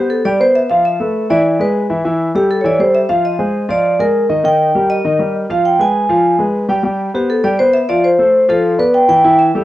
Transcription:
0.00 0.19 B3 medium
0.00 0.10 G4 medium
0.00 0.20 B4 medium
0.00 0.20 C5 medium
0.10 0.24 A4 medium
0.25 0.37 G3 medium
0.25 0.37 G4 medium
0.25 0.40 D5 medium
0.25 0.38 G5 medium
0.40 0.64 B3 medium
0.40 0.65 B4 medium
0.40 0.65 C5 medium
0.40 0.56 C5 medium
0.55 0.71 E5 loud
0.69 0.95 F3 medium
0.69 0.95 F4 medium
0.69 0.85 F5 medium
0.69 0.95 F5 medium
0.85 1.27 E5 medium
1.00 1.24 A3 medium
1.00 1.25 A4 medium
1.00 1.25 B4 medium
1.30 1.54 E3 medium
1.30 1.55 E4 medium
1.30 1.61 D5 medium
1.30 1.55 E5 medium
1.59 1.84 G#3 medium
1.59 1.84 G#4 medium
1.59 1.84 B4 medium
1.59 1.88 B4 medium
1.89 2.02 E3 medium
1.89 2.02 E4 medium
1.89 2.02 E5 medium
2.04 2.29 E3 medium
2.04 2.29 E4 medium
2.04 2.30 E5 medium
2.35 2.59 G3 medium
2.35 2.59 G4 medium
2.35 2.49 G4 medium
2.35 2.60 A4 medium
2.51 2.62 A4 medium
2.61 2.77 E3 medium
2.61 2.77 E4 medium
2.61 2.65 C#5 medium
2.61 2.77 E5 medium
2.66 2.79 D5 medium
2.79 3.04 G3 medium
2.79 3.04 G4 medium
2.79 3.05 A4 medium
2.79 2.94 C5 medium
2.95 3.02 E5 medium
3.09 3.34 F3 medium
3.09 3.34 F4 medium
3.09 3.16 F5 medium
3.09 3.34 F5 medium
3.25 3.71 D#5 medium
3.39 3.64 G#3 medium
3.39 3.64 G#4 medium
3.39 3.64 C5 medium
3.69 3.94 F3 medium
3.69 3.94 F4 medium
3.69 4.01 D5 medium
3.69 3.94 F5 medium
3.99 4.24 G#3 medium
3.99 4.24 G#4 medium
3.99 4.24 A#4 medium
3.99 4.28 A#4 medium
4.29 4.42 D#3 medium
4.29 4.42 D#4 medium
4.29 4.42 D#5 medium
4.44 4.69 D#3 medium
4.44 4.69 D#4 medium
4.44 4.69 D#5 medium
4.44 4.87 G5 medium
4.75 4.99 G3 medium
4.75 5.00 G4 medium
4.75 5.00 A#4 medium
4.90 5.32 D#5 medium
5.05 5.17 D#3 medium
5.05 5.17 D#4 medium
5.05 5.17 D#5 medium
5.19 5.44 G3 medium
5.19 5.44 G4 medium
5.19 5.44 A#4 medium
5.50 5.74 F3 medium
5.50 5.74 F4 medium
5.50 5.74 F5 medium
5.50 5.57 F5 medium
5.65 5.79 G5 medium
5.79 6.04 G#3 medium
5.79 6.04 G#4 medium
5.79 6.04 B4 medium
5.79 6.36 G#5 medium
6.09 6.34 F3 medium
6.09 6.34 F4 medium
6.09 6.34 F5 medium
6.39 6.63 G#3 medium
6.39 6.64 G#4 medium
6.39 6.64 B4 medium
6.68 6.81 G3 medium
6.68 6.81 G4 medium
6.68 6.82 G5 medium
6.83 7.08 G3 medium
6.83 7.08 G4 medium
6.83 7.09 G5 medium
7.14 7.39 B3 medium
7.14 7.21 G4 medium
7.14 7.39 B4 medium
7.14 7.39 C5 medium
7.30 7.45 A4 medium
7.44 7.56 G3 medium
7.44 7.56 G4 medium
7.44 7.59 D5 medium
7.44 7.56 G5 medium
7.59 7.84 B3 medium
7.59 7.84 B4 medium
7.59 7.73 C5 medium
7.59 7.84 C5 medium
7.73 7.88 E5 loud
7.89 8.13 F3 medium
7.89 8.14 F4 medium
7.89 8.03 D5 medium
7.89 8.14 F5 medium
8.04 8.50 C5 medium
8.18 8.43 A3 medium
8.18 8.43 A4 medium
8.18 8.44 C5 medium
8.48 8.73 F3 medium
8.48 8.74 F4 medium
8.48 8.80 A4 medium
8.48 8.74 F5 medium
8.78 9.03 B3 medium
8.78 9.03 B4 medium
8.78 9.07 B4 medium
8.78 9.03 D5 medium
8.94 9.01 G5 medium
9.08 9.21 E3 medium
9.08 9.21 E4 medium
9.08 9.21 E5 medium
9.08 9.40 G5 medium
9.24 9.49 E3 medium
9.24 9.49 E4 medium
9.24 9.49 E5 medium
9.39 9.64 E5 medium
9.55 9.64 G3 medium
9.55 9.64 G4 medium
9.55 9.64 A4 medium

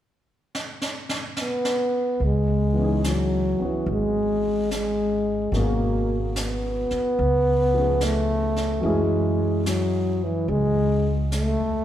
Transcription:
0.55 snare medium
0.82 snare medium
1.09 snare medium
1.37 2.26 B3 medium
1.37 snare medium
1.65 snare medium
2.20 3.56 C#2 medium
2.20 brush sweep soft
2.25 3.06 G#3 medium
2.73 5.50 E3 soft
2.73 3.57 B3 soft
2.78 3.59 C#4 soft
2.78 5.54 D#4 soft
2.84 5.55 G#4 soft
3.04 3.09 F3 soft
3.04 3.68 F#3 medium
3.04 snare soft
3.04 hi-hat pedal medium
3.59 5.53 B3 soft
3.59 5.53 C#4 soft
3.59 5.54 F#4 soft
3.59 muted upright bass stroke soft
3.66 3.90 E3 medium
3.86 5.48 G#1 medium
3.86 brush sweep soft
3.92 4.68 G#3 medium
4.71 5.52 G#3 medium
4.71 snare soft
4.71 hi-hat pedal soft
5.52 6.87 G#1 medium
5.52 7.19 B2 soft
5.52 7.17 F#3 soft
5.52 5.58 G#3 medium
5.52 7.19 C#4 soft
5.52 7.18 A#4 soft
5.52 brush sweep soft
5.52 snare soft
5.57 6.20 A#3 medium
5.57 7.20 G#4 medium
6.36 8.06 B3 medium
6.36 snare soft
6.36 hi-hat pedal medium
6.91 muted upright bass stroke soft
6.91 snare soft
7.18 8.79 C#2 medium
7.18 brush sweep soft
7.73 8.82 F3 soft
7.73 8.83 A3 soft
7.73 8.83 B3 soft
7.73 8.82 C#4 soft
7.78 8.84 G#4 soft
8.01 8.86 A3 medium
8.01 snare soft
8.01 hi-hat pedal soft
8.56 snare soft
8.80 10.45 F#2 medium
8.80 11.85 E3 soft
8.80 11.85 F#3 soft
8.80 9.70 G#3 medium
8.80 11.85 C#4 soft
8.80 11.85 E4 soft
8.80 brush sweep soft
8.86 11.85 G#4 medium
9.66 10.26 F#3 medium
9.66 snare soft
9.66 hi-hat pedal medium
10.24 10.51 E3 medium
10.48 11.55 C#2 medium
10.48 11.15 G#3 medium
10.48 brush sweep soft
11.32 11.85 A3 medium
11.32 snare soft
11.32 hi-hat pedal soft
11.59 11.85 E2 soft

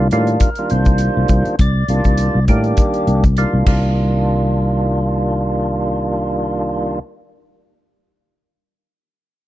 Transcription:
0.11 0.35 A2 medium
0.11 0.50 D#3 medium
0.11 0.50 G3 medium
0.11 0.50 A#3 medium
0.11 0.50 D4 medium
0.11 0.50 F4 loud
0.11 closed hi-hat soft
0.27 closed hi-hat soft
0.40 0.70 A#4 medium
0.40 kick medium
0.40 closed hi-hat medium
0.55 1.56 D#3 medium
0.55 1.56 G3 medium
0.55 1.56 A#3 medium
0.55 1.56 D4 medium
0.55 1.56 F4 medium
0.55 closed hi-hat soft
0.70 1.07 C2 medium
0.70 1.56 C5 medium
0.70 closed hi-hat medium
0.85 kick medium
0.85 closed hi-hat soft
0.98 closed hi-hat medium
1.17 1.27 C2 medium
1.28 1.42 C2 medium
1.28 kick medium
1.28 closed hi-hat medium
1.45 muted fretless electric bass stroke soft
1.45 closed hi-hat soft
1.59 1.83 C2 medium
1.59 2.45 D5 medium
1.59 kick medium
1.59 closed hi-hat medium
1.88 2.02 C2 medium
1.88 2.40 D#3 medium
1.88 2.40 G3 medium
1.88 2.39 A#3 medium
1.88 2.40 D4 medium
1.88 2.40 F4 medium
1.88 closed hi-hat medium
2.04 2.29 C2 medium
2.04 kick medium
2.04 closed hi-hat soft
2.18 closed hi-hat medium
2.35 2.46 C2 medium
2.48 2.72 A2 medium
2.48 3.24 D#3 medium
2.48 3.24 G3 medium
2.48 3.24 A#3 medium
2.48 3.24 D4 medium
2.48 3.24 G4 medium
2.48 kick medium
2.48 closed hi-hat soft
2.64 closed hi-hat soft
2.77 kick medium
2.77 closed hi-hat medium
2.94 closed hi-hat soft
3.07 3.44 C2 medium
3.07 closed hi-hat medium
3.24 kick medium
3.24 closed hi-hat soft
3.37 3.66 D#3 medium
3.37 3.66 G3 medium
3.37 3.66 A#3 medium
3.37 3.66 D4 medium
3.37 3.66 F4 medium
3.37 closed hi-hat medium
3.53 3.64 C2 medium
3.66 6.99 C2 medium
3.66 7.00 D#3 medium
3.66 6.99 G3 medium
3.66 7.00 A#3 medium
3.66 6.99 D4 medium
3.66 6.99 F4 medium
3.66 kick medium
3.66 crash medium

